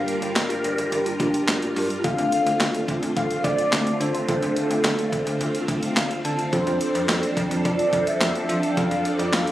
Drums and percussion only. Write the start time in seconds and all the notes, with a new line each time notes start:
0.08 closed hi-hat
0.22 closed hi-hat
0.36 snare, clap, closed hi-hat
0.50 closed hi-hat
0.64 closed hi-hat
0.78 closed hi-hat
0.92 closed hi-hat
1.06 closed hi-hat
1.20 kick, closed hi-hat
1.34 closed hi-hat
1.48 snare, clap, closed hi-hat
1.62 closed hi-hat
1.76 open hi-hat
1.90 closed hi-hat
2.04 kick, closed hi-hat
2.18 closed hi-hat
2.32 closed hi-hat
2.47 closed hi-hat
2.60 snare, clap, closed hi-hat
2.75 closed hi-hat
2.88 kick, closed hi-hat
3.03 closed hi-hat
3.17 kick, closed hi-hat
3.31 closed hi-hat
3.44 kick, closed hi-hat
3.58 closed hi-hat
3.73 snare, clap, closed hi-hat
3.87 closed hi-hat
4.01 closed hi-hat
4.15 closed hi-hat
4.28 kick, closed hi-hat
4.43 closed hi-hat
4.56 closed hi-hat
4.71 closed hi-hat
4.84 snare, clap, closed hi-hat
4.99 closed hi-hat
5.12 kick, closed hi-hat
5.27 closed hi-hat
5.41 closed hi-hat
5.55 closed hi-hat
5.68 kick, closed hi-hat
5.83 closed hi-hat
5.97 snare, clap, closed hi-hat
6.11 closed hi-hat
6.25 closed hi-hat
6.39 closed hi-hat
6.53 kick, closed hi-hat
6.67 closed hi-hat
6.81 closed hi-hat
6.95 closed hi-hat
7.09 snare, clap, closed hi-hat
7.23 closed hi-hat
7.37 kick, closed hi-hat
7.51 closed hi-hat
7.65 kick, closed hi-hat
7.79 closed hi-hat
7.93 kick, closed hi-hat
8.07 closed hi-hat
8.21 snare, clap, closed hi-hat
8.35 closed hi-hat
8.49 closed hi-hat
8.63 closed hi-hat
8.77 kick, closed hi-hat
8.91 closed hi-hat
9.05 closed hi-hat
9.19 closed hi-hat
9.33 snare, clap, closed hi-hat
9.47 closed hi-hat